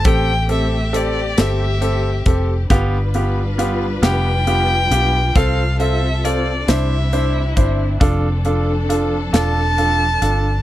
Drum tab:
HH |xxxxxx|xxxxxx|xxxxxx|xxxxxx|
SD |---o--|---o--|---o--|---o--|
BD |o----o|o-----|o----o|o-----|